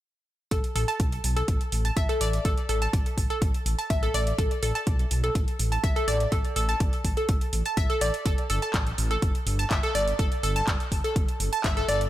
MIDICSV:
0, 0, Header, 1, 4, 480
1, 0, Start_track
1, 0, Tempo, 483871
1, 511, Time_signature, 4, 2, 24, 8
1, 11999, End_track
2, 0, Start_track
2, 0, Title_t, "Synth arpeggio sound"
2, 0, Program_c, 0, 84
2, 509, Note_on_c, 0, 69, 80
2, 565, Note_off_c, 0, 69, 0
2, 749, Note_on_c, 0, 69, 73
2, 832, Note_off_c, 0, 69, 0
2, 873, Note_on_c, 0, 81, 72
2, 925, Note_off_c, 0, 81, 0
2, 1354, Note_on_c, 0, 69, 74
2, 1431, Note_off_c, 0, 69, 0
2, 1835, Note_on_c, 0, 81, 68
2, 1886, Note_off_c, 0, 81, 0
2, 1950, Note_on_c, 0, 76, 100
2, 1983, Note_off_c, 0, 76, 0
2, 2075, Note_on_c, 0, 69, 91
2, 2105, Note_off_c, 0, 69, 0
2, 2191, Note_on_c, 0, 74, 94
2, 2223, Note_off_c, 0, 74, 0
2, 2430, Note_on_c, 0, 69, 82
2, 2485, Note_off_c, 0, 69, 0
2, 2670, Note_on_c, 0, 69, 71
2, 2753, Note_off_c, 0, 69, 0
2, 2796, Note_on_c, 0, 81, 75
2, 2846, Note_off_c, 0, 81, 0
2, 3276, Note_on_c, 0, 69, 79
2, 3352, Note_off_c, 0, 69, 0
2, 3755, Note_on_c, 0, 81, 73
2, 3806, Note_off_c, 0, 81, 0
2, 3869, Note_on_c, 0, 76, 99
2, 3903, Note_off_c, 0, 76, 0
2, 3995, Note_on_c, 0, 69, 95
2, 4025, Note_off_c, 0, 69, 0
2, 4110, Note_on_c, 0, 74, 94
2, 4143, Note_off_c, 0, 74, 0
2, 4349, Note_on_c, 0, 69, 78
2, 4405, Note_off_c, 0, 69, 0
2, 4589, Note_on_c, 0, 69, 76
2, 4672, Note_off_c, 0, 69, 0
2, 4714, Note_on_c, 0, 81, 75
2, 4765, Note_off_c, 0, 81, 0
2, 5194, Note_on_c, 0, 69, 74
2, 5271, Note_off_c, 0, 69, 0
2, 5673, Note_on_c, 0, 81, 71
2, 5725, Note_off_c, 0, 81, 0
2, 5788, Note_on_c, 0, 76, 100
2, 5822, Note_off_c, 0, 76, 0
2, 5913, Note_on_c, 0, 69, 90
2, 5945, Note_off_c, 0, 69, 0
2, 6029, Note_on_c, 0, 74, 99
2, 6063, Note_off_c, 0, 74, 0
2, 6270, Note_on_c, 0, 69, 80
2, 6325, Note_off_c, 0, 69, 0
2, 6508, Note_on_c, 0, 69, 76
2, 6592, Note_off_c, 0, 69, 0
2, 6633, Note_on_c, 0, 81, 75
2, 6685, Note_off_c, 0, 81, 0
2, 7114, Note_on_c, 0, 69, 74
2, 7191, Note_off_c, 0, 69, 0
2, 7596, Note_on_c, 0, 81, 76
2, 7646, Note_off_c, 0, 81, 0
2, 7710, Note_on_c, 0, 76, 99
2, 7743, Note_off_c, 0, 76, 0
2, 7834, Note_on_c, 0, 69, 94
2, 7865, Note_off_c, 0, 69, 0
2, 7949, Note_on_c, 0, 74, 100
2, 7983, Note_off_c, 0, 74, 0
2, 8189, Note_on_c, 0, 69, 80
2, 8245, Note_off_c, 0, 69, 0
2, 8430, Note_on_c, 0, 69, 74
2, 8513, Note_off_c, 0, 69, 0
2, 8555, Note_on_c, 0, 81, 75
2, 8606, Note_off_c, 0, 81, 0
2, 9034, Note_on_c, 0, 69, 75
2, 9111, Note_off_c, 0, 69, 0
2, 9513, Note_on_c, 0, 81, 75
2, 9565, Note_off_c, 0, 81, 0
2, 9628, Note_on_c, 0, 76, 95
2, 9662, Note_off_c, 0, 76, 0
2, 9754, Note_on_c, 0, 69, 100
2, 9785, Note_off_c, 0, 69, 0
2, 9869, Note_on_c, 0, 74, 98
2, 9903, Note_off_c, 0, 74, 0
2, 10109, Note_on_c, 0, 69, 83
2, 10165, Note_off_c, 0, 69, 0
2, 10350, Note_on_c, 0, 69, 70
2, 10433, Note_off_c, 0, 69, 0
2, 10474, Note_on_c, 0, 81, 78
2, 10525, Note_off_c, 0, 81, 0
2, 10955, Note_on_c, 0, 69, 77
2, 11031, Note_off_c, 0, 69, 0
2, 11434, Note_on_c, 0, 81, 70
2, 11485, Note_off_c, 0, 81, 0
2, 11550, Note_on_c, 0, 76, 98
2, 11583, Note_off_c, 0, 76, 0
2, 11675, Note_on_c, 0, 69, 96
2, 11706, Note_off_c, 0, 69, 0
2, 11791, Note_on_c, 0, 74, 104
2, 11823, Note_off_c, 0, 74, 0
2, 11999, End_track
3, 0, Start_track
3, 0, Title_t, "Detuned saw bass"
3, 0, Program_c, 1, 39
3, 510, Note_on_c, 1, 33, 88
3, 604, Note_off_c, 1, 33, 0
3, 750, Note_on_c, 1, 33, 96
3, 844, Note_off_c, 1, 33, 0
3, 990, Note_on_c, 1, 35, 81
3, 1174, Note_off_c, 1, 35, 0
3, 1229, Note_on_c, 1, 35, 101
3, 1414, Note_off_c, 1, 35, 0
3, 1470, Note_on_c, 1, 33, 91
3, 1565, Note_off_c, 1, 33, 0
3, 1712, Note_on_c, 1, 33, 84
3, 1895, Note_off_c, 1, 33, 0
3, 1950, Note_on_c, 1, 33, 100
3, 2045, Note_off_c, 1, 33, 0
3, 2192, Note_on_c, 1, 33, 87
3, 2375, Note_off_c, 1, 33, 0
3, 2430, Note_on_c, 1, 33, 84
3, 2524, Note_off_c, 1, 33, 0
3, 2671, Note_on_c, 1, 33, 86
3, 2854, Note_off_c, 1, 33, 0
3, 2910, Note_on_c, 1, 33, 92
3, 3005, Note_off_c, 1, 33, 0
3, 3150, Note_on_c, 1, 33, 103
3, 3245, Note_off_c, 1, 33, 0
3, 3390, Note_on_c, 1, 33, 83
3, 3485, Note_off_c, 1, 33, 0
3, 3630, Note_on_c, 1, 33, 81
3, 3724, Note_off_c, 1, 33, 0
3, 3870, Note_on_c, 1, 33, 96
3, 4054, Note_off_c, 1, 33, 0
3, 4110, Note_on_c, 1, 33, 89
3, 4294, Note_off_c, 1, 33, 0
3, 4350, Note_on_c, 1, 33, 93
3, 4444, Note_off_c, 1, 33, 0
3, 4591, Note_on_c, 1, 33, 91
3, 4685, Note_off_c, 1, 33, 0
3, 4830, Note_on_c, 1, 35, 84
3, 5014, Note_off_c, 1, 35, 0
3, 5070, Note_on_c, 1, 35, 104
3, 5254, Note_off_c, 1, 35, 0
3, 5309, Note_on_c, 1, 33, 95
3, 5404, Note_off_c, 1, 33, 0
3, 5551, Note_on_c, 1, 33, 84
3, 5734, Note_off_c, 1, 33, 0
3, 5789, Note_on_c, 1, 33, 98
3, 5884, Note_off_c, 1, 33, 0
3, 6030, Note_on_c, 1, 33, 84
3, 6214, Note_off_c, 1, 33, 0
3, 6269, Note_on_c, 1, 33, 80
3, 6364, Note_off_c, 1, 33, 0
3, 6510, Note_on_c, 1, 33, 83
3, 6694, Note_off_c, 1, 33, 0
3, 6750, Note_on_c, 1, 33, 91
3, 6844, Note_off_c, 1, 33, 0
3, 6990, Note_on_c, 1, 33, 99
3, 7084, Note_off_c, 1, 33, 0
3, 7230, Note_on_c, 1, 33, 85
3, 7324, Note_off_c, 1, 33, 0
3, 7471, Note_on_c, 1, 33, 79
3, 7565, Note_off_c, 1, 33, 0
3, 7709, Note_on_c, 1, 33, 98
3, 7804, Note_off_c, 1, 33, 0
3, 7951, Note_on_c, 1, 33, 78
3, 8045, Note_off_c, 1, 33, 0
3, 8190, Note_on_c, 1, 31, 94
3, 8284, Note_off_c, 1, 31, 0
3, 8431, Note_on_c, 1, 31, 97
3, 8525, Note_off_c, 1, 31, 0
3, 8669, Note_on_c, 1, 33, 83
3, 8854, Note_off_c, 1, 33, 0
3, 8911, Note_on_c, 1, 33, 104
3, 9095, Note_off_c, 1, 33, 0
3, 9150, Note_on_c, 1, 31, 92
3, 9244, Note_off_c, 1, 31, 0
3, 9390, Note_on_c, 1, 31, 85
3, 9574, Note_off_c, 1, 31, 0
3, 9630, Note_on_c, 1, 31, 98
3, 9724, Note_off_c, 1, 31, 0
3, 9870, Note_on_c, 1, 31, 84
3, 10054, Note_off_c, 1, 31, 0
3, 10109, Note_on_c, 1, 31, 78
3, 10204, Note_off_c, 1, 31, 0
3, 10350, Note_on_c, 1, 31, 89
3, 10534, Note_off_c, 1, 31, 0
3, 10590, Note_on_c, 1, 31, 89
3, 10685, Note_off_c, 1, 31, 0
3, 10830, Note_on_c, 1, 31, 99
3, 10924, Note_off_c, 1, 31, 0
3, 11070, Note_on_c, 1, 31, 82
3, 11164, Note_off_c, 1, 31, 0
3, 11311, Note_on_c, 1, 31, 81
3, 11405, Note_off_c, 1, 31, 0
3, 11550, Note_on_c, 1, 31, 93
3, 11734, Note_off_c, 1, 31, 0
3, 11790, Note_on_c, 1, 31, 89
3, 11974, Note_off_c, 1, 31, 0
3, 11999, End_track
4, 0, Start_track
4, 0, Title_t, "Drums"
4, 509, Note_on_c, 9, 36, 102
4, 509, Note_on_c, 9, 42, 89
4, 608, Note_off_c, 9, 36, 0
4, 609, Note_off_c, 9, 42, 0
4, 635, Note_on_c, 9, 42, 38
4, 734, Note_off_c, 9, 42, 0
4, 750, Note_on_c, 9, 46, 93
4, 849, Note_off_c, 9, 46, 0
4, 875, Note_on_c, 9, 42, 36
4, 974, Note_off_c, 9, 42, 0
4, 990, Note_on_c, 9, 36, 106
4, 990, Note_on_c, 9, 42, 86
4, 1089, Note_off_c, 9, 36, 0
4, 1089, Note_off_c, 9, 42, 0
4, 1115, Note_on_c, 9, 42, 37
4, 1215, Note_off_c, 9, 42, 0
4, 1230, Note_on_c, 9, 46, 98
4, 1329, Note_off_c, 9, 46, 0
4, 1355, Note_on_c, 9, 42, 38
4, 1454, Note_off_c, 9, 42, 0
4, 1469, Note_on_c, 9, 42, 89
4, 1470, Note_on_c, 9, 36, 105
4, 1569, Note_off_c, 9, 36, 0
4, 1569, Note_off_c, 9, 42, 0
4, 1595, Note_on_c, 9, 42, 37
4, 1694, Note_off_c, 9, 42, 0
4, 1709, Note_on_c, 9, 46, 97
4, 1808, Note_off_c, 9, 46, 0
4, 1834, Note_on_c, 9, 42, 38
4, 1933, Note_off_c, 9, 42, 0
4, 1950, Note_on_c, 9, 36, 108
4, 1950, Note_on_c, 9, 42, 91
4, 2049, Note_off_c, 9, 36, 0
4, 2050, Note_off_c, 9, 42, 0
4, 2076, Note_on_c, 9, 42, 39
4, 2175, Note_off_c, 9, 42, 0
4, 2191, Note_on_c, 9, 46, 102
4, 2290, Note_off_c, 9, 46, 0
4, 2315, Note_on_c, 9, 42, 37
4, 2414, Note_off_c, 9, 42, 0
4, 2430, Note_on_c, 9, 36, 112
4, 2430, Note_on_c, 9, 42, 89
4, 2529, Note_off_c, 9, 36, 0
4, 2530, Note_off_c, 9, 42, 0
4, 2555, Note_on_c, 9, 42, 36
4, 2654, Note_off_c, 9, 42, 0
4, 2670, Note_on_c, 9, 46, 96
4, 2769, Note_off_c, 9, 46, 0
4, 2795, Note_on_c, 9, 42, 35
4, 2895, Note_off_c, 9, 42, 0
4, 2910, Note_on_c, 9, 36, 110
4, 2911, Note_on_c, 9, 42, 84
4, 3009, Note_off_c, 9, 36, 0
4, 3010, Note_off_c, 9, 42, 0
4, 3036, Note_on_c, 9, 42, 36
4, 3135, Note_off_c, 9, 42, 0
4, 3150, Note_on_c, 9, 36, 58
4, 3151, Note_on_c, 9, 46, 100
4, 3249, Note_off_c, 9, 36, 0
4, 3250, Note_off_c, 9, 46, 0
4, 3276, Note_on_c, 9, 42, 37
4, 3375, Note_off_c, 9, 42, 0
4, 3390, Note_on_c, 9, 36, 119
4, 3391, Note_on_c, 9, 42, 86
4, 3489, Note_off_c, 9, 36, 0
4, 3490, Note_off_c, 9, 42, 0
4, 3516, Note_on_c, 9, 42, 37
4, 3615, Note_off_c, 9, 42, 0
4, 3631, Note_on_c, 9, 46, 102
4, 3730, Note_off_c, 9, 46, 0
4, 3756, Note_on_c, 9, 42, 36
4, 3855, Note_off_c, 9, 42, 0
4, 3870, Note_on_c, 9, 36, 117
4, 3870, Note_on_c, 9, 42, 86
4, 3969, Note_off_c, 9, 36, 0
4, 3970, Note_off_c, 9, 42, 0
4, 3995, Note_on_c, 9, 42, 38
4, 4094, Note_off_c, 9, 42, 0
4, 4110, Note_on_c, 9, 46, 99
4, 4210, Note_off_c, 9, 46, 0
4, 4235, Note_on_c, 9, 42, 36
4, 4334, Note_off_c, 9, 42, 0
4, 4350, Note_on_c, 9, 36, 110
4, 4350, Note_on_c, 9, 42, 83
4, 4449, Note_off_c, 9, 36, 0
4, 4449, Note_off_c, 9, 42, 0
4, 4475, Note_on_c, 9, 42, 36
4, 4574, Note_off_c, 9, 42, 0
4, 4589, Note_on_c, 9, 46, 97
4, 4688, Note_off_c, 9, 46, 0
4, 4714, Note_on_c, 9, 42, 34
4, 4814, Note_off_c, 9, 42, 0
4, 4829, Note_on_c, 9, 36, 109
4, 4829, Note_on_c, 9, 42, 83
4, 4928, Note_off_c, 9, 42, 0
4, 4929, Note_off_c, 9, 36, 0
4, 4954, Note_on_c, 9, 42, 34
4, 5053, Note_off_c, 9, 42, 0
4, 5069, Note_on_c, 9, 46, 110
4, 5168, Note_off_c, 9, 46, 0
4, 5194, Note_on_c, 9, 42, 33
4, 5294, Note_off_c, 9, 42, 0
4, 5309, Note_on_c, 9, 36, 115
4, 5310, Note_on_c, 9, 42, 85
4, 5408, Note_off_c, 9, 36, 0
4, 5409, Note_off_c, 9, 42, 0
4, 5434, Note_on_c, 9, 42, 37
4, 5534, Note_off_c, 9, 42, 0
4, 5550, Note_on_c, 9, 46, 99
4, 5649, Note_off_c, 9, 46, 0
4, 5675, Note_on_c, 9, 42, 35
4, 5774, Note_off_c, 9, 42, 0
4, 5789, Note_on_c, 9, 36, 121
4, 5790, Note_on_c, 9, 42, 87
4, 5889, Note_off_c, 9, 36, 0
4, 5889, Note_off_c, 9, 42, 0
4, 5915, Note_on_c, 9, 42, 35
4, 6014, Note_off_c, 9, 42, 0
4, 6030, Note_on_c, 9, 46, 105
4, 6129, Note_off_c, 9, 46, 0
4, 6154, Note_on_c, 9, 42, 36
4, 6253, Note_off_c, 9, 42, 0
4, 6269, Note_on_c, 9, 36, 113
4, 6269, Note_on_c, 9, 42, 79
4, 6368, Note_off_c, 9, 42, 0
4, 6369, Note_off_c, 9, 36, 0
4, 6394, Note_on_c, 9, 42, 34
4, 6493, Note_off_c, 9, 42, 0
4, 6509, Note_on_c, 9, 46, 97
4, 6608, Note_off_c, 9, 46, 0
4, 6634, Note_on_c, 9, 42, 34
4, 6733, Note_off_c, 9, 42, 0
4, 6749, Note_on_c, 9, 36, 110
4, 6749, Note_on_c, 9, 42, 79
4, 6848, Note_off_c, 9, 42, 0
4, 6849, Note_off_c, 9, 36, 0
4, 6874, Note_on_c, 9, 42, 34
4, 6973, Note_off_c, 9, 42, 0
4, 6989, Note_on_c, 9, 46, 104
4, 6990, Note_on_c, 9, 36, 55
4, 7088, Note_off_c, 9, 46, 0
4, 7089, Note_off_c, 9, 36, 0
4, 7113, Note_on_c, 9, 42, 33
4, 7212, Note_off_c, 9, 42, 0
4, 7228, Note_on_c, 9, 42, 81
4, 7230, Note_on_c, 9, 36, 120
4, 7327, Note_off_c, 9, 42, 0
4, 7329, Note_off_c, 9, 36, 0
4, 7354, Note_on_c, 9, 42, 37
4, 7453, Note_off_c, 9, 42, 0
4, 7468, Note_on_c, 9, 46, 98
4, 7567, Note_off_c, 9, 46, 0
4, 7594, Note_on_c, 9, 42, 33
4, 7693, Note_off_c, 9, 42, 0
4, 7709, Note_on_c, 9, 42, 80
4, 7710, Note_on_c, 9, 36, 115
4, 7809, Note_off_c, 9, 36, 0
4, 7809, Note_off_c, 9, 42, 0
4, 7835, Note_on_c, 9, 42, 34
4, 7934, Note_off_c, 9, 42, 0
4, 7949, Note_on_c, 9, 46, 103
4, 8048, Note_off_c, 9, 46, 0
4, 8074, Note_on_c, 9, 42, 34
4, 8174, Note_off_c, 9, 42, 0
4, 8190, Note_on_c, 9, 36, 108
4, 8190, Note_on_c, 9, 42, 86
4, 8289, Note_off_c, 9, 36, 0
4, 8289, Note_off_c, 9, 42, 0
4, 8314, Note_on_c, 9, 42, 36
4, 8413, Note_off_c, 9, 42, 0
4, 8429, Note_on_c, 9, 46, 94
4, 8528, Note_off_c, 9, 46, 0
4, 8554, Note_on_c, 9, 42, 33
4, 8653, Note_off_c, 9, 42, 0
4, 8668, Note_on_c, 9, 39, 109
4, 8669, Note_on_c, 9, 42, 80
4, 8670, Note_on_c, 9, 36, 106
4, 8767, Note_off_c, 9, 39, 0
4, 8769, Note_off_c, 9, 36, 0
4, 8769, Note_off_c, 9, 42, 0
4, 8795, Note_on_c, 9, 42, 35
4, 8894, Note_off_c, 9, 42, 0
4, 8910, Note_on_c, 9, 46, 100
4, 9009, Note_off_c, 9, 46, 0
4, 9035, Note_on_c, 9, 42, 33
4, 9134, Note_off_c, 9, 42, 0
4, 9150, Note_on_c, 9, 36, 115
4, 9150, Note_on_c, 9, 42, 86
4, 9249, Note_off_c, 9, 36, 0
4, 9249, Note_off_c, 9, 42, 0
4, 9275, Note_on_c, 9, 42, 35
4, 9374, Note_off_c, 9, 42, 0
4, 9390, Note_on_c, 9, 46, 100
4, 9490, Note_off_c, 9, 46, 0
4, 9515, Note_on_c, 9, 42, 36
4, 9614, Note_off_c, 9, 42, 0
4, 9629, Note_on_c, 9, 39, 100
4, 9630, Note_on_c, 9, 36, 113
4, 9631, Note_on_c, 9, 42, 84
4, 9728, Note_off_c, 9, 39, 0
4, 9729, Note_off_c, 9, 36, 0
4, 9730, Note_off_c, 9, 42, 0
4, 9756, Note_on_c, 9, 42, 36
4, 9855, Note_off_c, 9, 42, 0
4, 9870, Note_on_c, 9, 46, 102
4, 9970, Note_off_c, 9, 46, 0
4, 9995, Note_on_c, 9, 42, 34
4, 10094, Note_off_c, 9, 42, 0
4, 10109, Note_on_c, 9, 36, 107
4, 10110, Note_on_c, 9, 42, 84
4, 10209, Note_off_c, 9, 36, 0
4, 10209, Note_off_c, 9, 42, 0
4, 10235, Note_on_c, 9, 42, 35
4, 10334, Note_off_c, 9, 42, 0
4, 10350, Note_on_c, 9, 46, 86
4, 10450, Note_off_c, 9, 46, 0
4, 10475, Note_on_c, 9, 42, 33
4, 10574, Note_off_c, 9, 42, 0
4, 10589, Note_on_c, 9, 36, 103
4, 10589, Note_on_c, 9, 39, 111
4, 10590, Note_on_c, 9, 42, 86
4, 10688, Note_off_c, 9, 39, 0
4, 10689, Note_off_c, 9, 36, 0
4, 10690, Note_off_c, 9, 42, 0
4, 10716, Note_on_c, 9, 42, 36
4, 10815, Note_off_c, 9, 42, 0
4, 10829, Note_on_c, 9, 36, 55
4, 10830, Note_on_c, 9, 46, 99
4, 10929, Note_off_c, 9, 36, 0
4, 10930, Note_off_c, 9, 46, 0
4, 10955, Note_on_c, 9, 42, 35
4, 11055, Note_off_c, 9, 42, 0
4, 11069, Note_on_c, 9, 36, 110
4, 11071, Note_on_c, 9, 42, 83
4, 11169, Note_off_c, 9, 36, 0
4, 11170, Note_off_c, 9, 42, 0
4, 11195, Note_on_c, 9, 42, 38
4, 11294, Note_off_c, 9, 42, 0
4, 11309, Note_on_c, 9, 46, 90
4, 11409, Note_off_c, 9, 46, 0
4, 11434, Note_on_c, 9, 42, 34
4, 11534, Note_off_c, 9, 42, 0
4, 11548, Note_on_c, 9, 39, 106
4, 11549, Note_on_c, 9, 36, 106
4, 11550, Note_on_c, 9, 42, 83
4, 11647, Note_off_c, 9, 39, 0
4, 11649, Note_off_c, 9, 36, 0
4, 11649, Note_off_c, 9, 42, 0
4, 11675, Note_on_c, 9, 42, 37
4, 11774, Note_off_c, 9, 42, 0
4, 11790, Note_on_c, 9, 46, 98
4, 11890, Note_off_c, 9, 46, 0
4, 11915, Note_on_c, 9, 42, 37
4, 11999, Note_off_c, 9, 42, 0
4, 11999, End_track
0, 0, End_of_file